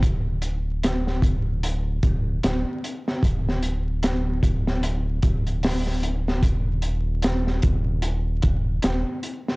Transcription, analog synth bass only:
X:1
M:4/4
L:1/8
Q:"Swing 16ths" 1/4=75
K:Eblyd
V:1 name="Analog synth bass" clef=bass
D,,,3 D,,,2 D,,, D,,, z | D,,,3 D,,,2 D,,,3 | E,,,3 E,,,2 E,,, E,,, z |]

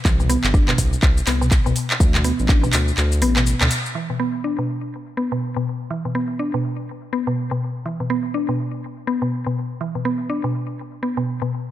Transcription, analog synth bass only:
X:1
M:4/4
L:1/16
Q:"Swing 16ths" 1/4=123
K:Dmix
V:1 name="Analog synth bass" clef=bass
C,,2 z G,,,2 z C,, z C,, z C,,2 z C,, z2 | D,,2 z A,,,2 z D,, z D,,2 A,,,2 z D,, z2 | z16 | z16 |
z16 | z16 |]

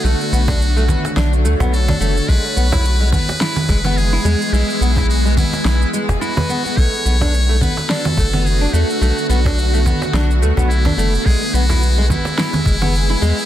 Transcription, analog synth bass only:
X:1
M:4/4
L:1/16
Q:"Swing 16ths" 1/4=107
K:Bdor
V:1 name="Analog synth bass" clef=bass
B,,, z B,,,4 z2 B,,,2 D,, B,,,2 z F,,, z | B,,, z B,,,4 z4 F,,,3 z E,, z | B,,, z B,,,4 z2 B,,, z2 F,,, z4 | B,,, z B,,,4 z4 F,,,3 z E,, z |
B,,, z B,,,4 z2 B,,,2 D,, B,,,2 z F,,, z | B,,, z B,,,4 z4 F,,,3 z E,, z |]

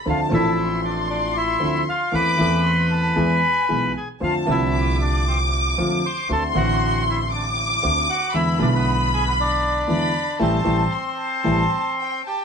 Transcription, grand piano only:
X:1
M:4/4
L:1/8
Q:1/4=116
K:Am
V:1 name="Grand piano" clef=bass
[D,,D,F,CDA] [A,,,A,,F,CDA]4- [A,,,A,,F,CDA] [D,,D,F,CDA] z | [E,,E,A,CA] [E,,E,A,CA]3 [E,,E,^G,B,^G] z [B,,,B,,E,G,B,G] z | [F,,D,F,A,CF] [C,,C,D,F,A,C]4- [C,,C,D,F,A,C] [F,,D,F,A,CF] z | [D,,D,A,C^F] [A,,,A,,D,A,CF]4- [A,,,A,,D,A,CF] [D,,D,A,CF] z |
[E,,D,E,^G,B,E] [B,,,B,,D,G,B,E]4- [B,,,B,,D,G,B,E] [E,,D,E,G,B,E] z | [E,G,A,] [E,G,A,] z2 [E,G,A,] z3 |]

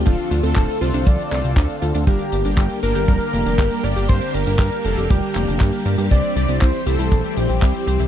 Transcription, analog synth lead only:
X:1
M:4/4
L:1/16
Q:1/4=119
K:Gdor
V:1 name="Analog synth lead"
F3 A3 c2 d6 z2 | G6 B8 d2 | c2 B2 B2 A2 G6 z2 | d4 c2 A4 G6 |]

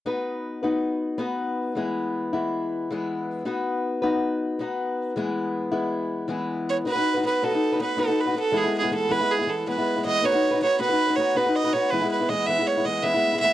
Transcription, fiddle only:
X:1
M:9/8
L:1/8
Q:3/8=107
K:Bmix
V:1 name="Fiddle"
z8 z | z8 z | z8 z | z8 c |
B2 B A2 B A B A | G G A B G A B2 d | c2 c B2 c B d c | B B d e c d e2 e |]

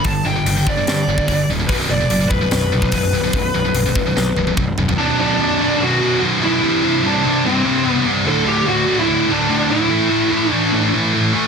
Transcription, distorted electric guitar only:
X:1
M:4/4
L:1/16
Q:1/4=146
K:Bphr
V:1 name="Distorted electric guitar" clef=bass
[G,,D,]2 [G,,D,] [G,,D,] [G,,D,] [G,,D,] [G,,D,] [G,,D,] [G,,D,]2 [G,,D,] [G,,D,] [G,,D,]2 [G,,D,] [G,,D,] | [B,,,F,,B,,]2 [B,,,F,,] [B,,,F,,] [B,,,F,,] [B,,,F,,] [B,,,F,,] [B,,,F,,] [B,,,F,,]2 [B,,,F,,] [B,,,F,,] [B,,,F,,]2 [B,,,F,,] [B,,,F,,] | [B,,,F,,]2 [B,,,F,,] [B,,,F,,] [B,,,F,,] [B,,,F,,] [B,,,F,,] [B,,,F,,] [B,,,F,,]2 [B,,,F,,] [B,,,F,,] [B,,,F,,]2 [B,,,F,,] [B,,,F,,] | [B,,,F,,B,,]2 [B,,,F,,B,,]2 [B,,,F,,B,,]2 [B,,,F,,B,,]2 [B,,,F,,B,,]2 [B,,,F,,B,,]2 [B,,,F,,B,,]2 [B,,,F,,B,,]2 |
[C,,G,,C,]2 [C,,G,,C,]2 [C,,G,,C,]2 [C,,G,,C,]2 [C,,G,,C,]2 [C,,G,,C,]2 [C,,G,,C,]2 [C,,G,,C,]2 | [D,,A,,D,]2 [D,,A,,D,]2 [D,,A,,D,]2 [D,,A,,D,]2 [D,,A,,D,]2 [D,,A,,D,]2 [D,,A,,D,]2 [D,,A,,D,]2 | [A,,E,A,]2 [A,,E,A,]2 [A,,E,A,]2 [A,,E,A,]2 [A,,E,A,]2 [A,,E,A,]2 [A,,E,A,]2 [A,,E,A,]2 |]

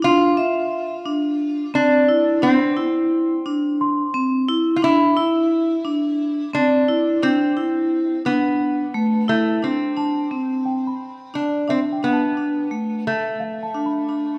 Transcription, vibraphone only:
X:1
M:7/8
L:1/8
Q:1/4=88
K:C
V:1 name="Vibraphone"
D e2 D2 C E | D E2 D2 C E | D E2 D2 C E | D E2 D2 A, E |
D D C2 z D D | D D A,2 z D D |]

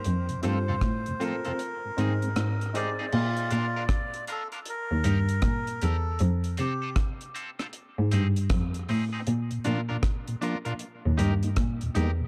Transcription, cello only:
X:1
M:4/4
L:1/16
Q:"Swing 16ths" 1/4=78
K:Bb
V:1 name="Cello" clef=bass
F,,2 G,,2 A,,3 z3 _A,,2 A,,3 z | B,,2 B,,4 z3 E,, G,,2 B,,2 =E,,2 | F,,2 C,4 z3 _A,, G,,2 F,,2 =A,, z | B,,2 B,,4 z3 E,, G,,2 B,,2 =E,,2 |]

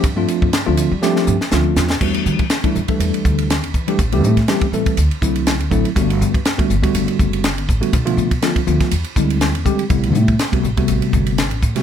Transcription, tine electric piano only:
X:1
M:4/4
L:1/16
Q:"Swing 16ths" 1/4=122
K:Gmix
V:1 name="Tine electric piano"
z [F,A,CDF]3 z [F,A,CDF]2 z [F,A,CDG]3 z [F,A,CDF]3 z | [K:Em] [E,G,A,DF]3 z2 [E,G,A,DE] z [E,G,A,DA]4- [E,G,A,DA] z3 [E,G,A,DG] | z [E,G,A,CG]2 z [E,G,A,CG] z [E,G,A,CA]2 z2 [D,F,A,CE]3 z [D,F,A,CE] z | [D,G,A,B,F]3 z2 [D,G,A,B,F] z [D,G,A,B,F]4- [D,G,A,B,F] z3 [D,G,A,B,F] |
z [D,=F,A,B,=F]2 z [D,F,A,B,F] z [D,F,A,B,F]2 z2 [D,G,^G,^B,E]3 z [D,=G,^G,B,=G] z | [C,G,A,B,E]3 z2 [C,G,A,B,F] z [C,G,A,B,F]4- [C,G,A,B,F] z3 [C,G,A,B,F] |]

